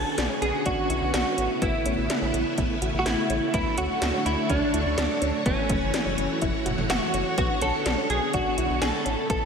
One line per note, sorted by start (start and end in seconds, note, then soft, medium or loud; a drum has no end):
0.00 1.36 D3 medium
0.00 3.50 B3 medium
0.00 1.36 C#4 medium
0.00 1.36 F#4 medium
0.00 0.27 A4 loud
0.18 0.28 B1 loud
0.18 0.25 D4 medium
0.18 snare loud
0.18 closed hi-hat medium
0.27 0.43 C#4 medium
0.27 0.39 G#4 loud
0.42 0.52 B1 loud
0.42 0.66 G#4 medium
0.42 closed hi-hat medium
0.66 0.76 B1 loud
0.66 0.79 D4 medium
0.66 1.13 F#4 medium
0.66 kick medium
0.66 closed hi-hat medium
0.90 1.00 B1 medium
0.90 1.03 E4 medium
0.90 closed hi-hat medium
1.02 1.12 B1 loud
1.14 1.24 B1 loud
1.14 1.28 D4 medium
1.14 1.63 F#4 medium
1.14 snare loud
1.14 closed hi-hat medium
1.38 1.48 A1 medium
1.38 3.52 C#3 medium
1.38 7.34 A3 medium
1.38 1.51 C#4 medium
1.38 3.52 E4 medium
1.38 closed hi-hat medium
1.62 1.72 A1 loud
1.62 1.76 B3 medium
1.62 2.54 E4 medium
1.62 kick loud
1.62 closed hi-hat medium
1.86 1.96 A1 loud
1.86 2.00 C#4 medium
1.86 closed hi-hat medium
1.98 2.08 A1 medium
2.10 2.17 D4 medium
2.10 snare loud
2.10 closed hi-hat medium
2.22 2.32 A1 loud
2.22 2.36 C#4 medium
2.34 2.44 A1 loud
2.34 closed hi-hat medium
2.58 2.68 A1 loud
2.58 2.72 E4 medium
2.58 kick medium
2.58 closed hi-hat medium
2.82 2.92 A1 medium
2.82 2.96 F#4 medium
2.82 closed hi-hat medium
2.94 3.04 A1 medium
2.99 3.06 F#4 medium
3.06 3.16 A1 loud
3.06 3.20 E4 medium
3.06 3.53 E4 medium
3.06 snare loud
3.06 closed hi-hat medium
3.30 3.40 A1 loud
3.30 3.44 C#4 medium
3.30 closed hi-hat medium
3.54 3.64 D2 loud
3.54 5.44 D3 medium
3.54 3.67 B3 medium
3.54 3.77 E4 loud
3.54 9.02 F#4 medium
3.54 9.02 C#5 medium
3.54 kick loud
3.54 closed hi-hat medium
3.78 3.88 D2 loud
3.78 3.91 C#4 medium
3.78 4.25 F#4 loud
3.78 closed hi-hat medium
4.02 4.12 D2 loud
4.02 4.09 D4 medium
4.02 snare loud
4.02 closed hi-hat medium
4.14 4.27 C#4 medium
4.26 4.36 D2 loud
4.26 4.51 E4 loud
4.26 closed hi-hat medium
4.50 4.60 D2 loud
4.50 4.97 D4 medium
4.50 4.63 D4 medium
4.50 kick medium
4.50 closed hi-hat medium
4.74 4.84 D2 medium
4.74 4.87 E4 medium
4.74 closed hi-hat medium
4.86 4.96 D2 medium
4.98 5.08 D2 loud
4.98 5.11 D4 medium
4.98 5.46 D4 medium
4.98 snare loud
4.98 closed hi-hat medium
5.22 5.32 D2 loud
5.22 5.35 C#4 medium
5.22 closed hi-hat medium
5.46 5.56 F#1 loud
5.46 7.36 E3 medium
5.46 5.59 B3 medium
5.46 6.38 C#4 medium
5.46 kick loud
5.46 closed hi-hat medium
5.69 5.80 F#1 loud
5.69 5.83 C#4 medium
5.69 kick medium
5.69 closed hi-hat medium
5.82 5.92 F#1 medium
5.94 6.01 D4 medium
5.94 snare loud
5.94 closed hi-hat medium
6.06 6.16 F#1 loud
6.06 6.20 C#4 medium
6.18 6.28 F#1 loud
6.18 closed hi-hat medium
6.42 6.52 F#1 loud
6.42 6.55 E4 medium
6.42 kick medium
6.42 closed hi-hat medium
6.66 6.76 F#1 loud
6.66 6.79 F#4 medium
6.66 closed hi-hat medium
6.66 mid tom medium
6.78 6.88 F#1 medium
6.78 mid tom medium
6.90 7.00 F#1 loud
6.90 7.03 E4 medium
6.90 7.35 F#4 medium
6.90 snare loud
6.90 closed hi-hat medium
7.14 7.24 F#1 loud
7.14 7.27 C#4 medium
7.14 closed hi-hat medium
7.38 7.48 B1 loud
7.38 9.04 D3 medium
7.38 7.51 B3 medium
7.38 9.45 B3 medium
7.38 7.62 F#4 medium
7.38 kick loud
7.38 closed hi-hat medium
7.62 7.72 B1 medium
7.62 7.75 C#4 medium
7.62 8.10 A4 loud
7.62 closed hi-hat medium
7.86 7.96 B1 loud
7.86 7.93 D4 medium
7.86 snare loud
7.86 closed hi-hat medium
7.98 8.11 C#4 medium
8.10 8.20 B1 loud
8.10 8.34 G#4 loud
8.10 closed hi-hat medium
8.33 8.44 B1 loud
8.33 8.47 D4 medium
8.33 8.82 F#4 medium
8.33 kick medium
8.33 closed hi-hat medium
8.58 8.68 B1 medium
8.58 8.71 E4 medium
8.58 closed hi-hat medium
8.70 8.80 B1 loud
8.82 8.92 B1 loud
8.82 8.95 D4 medium
8.82 9.27 A4 loud
8.82 snare loud
8.82 closed hi-hat medium
9.06 9.16 A1 medium
9.06 9.45 C#3 medium
9.06 9.45 A3 medium
9.06 9.19 C#4 medium
9.06 9.45 E4 medium
9.06 closed hi-hat medium
9.30 9.40 A1 loud
9.30 9.43 B3 medium
9.30 9.45 A4 loud
9.30 kick loud
9.30 closed hi-hat medium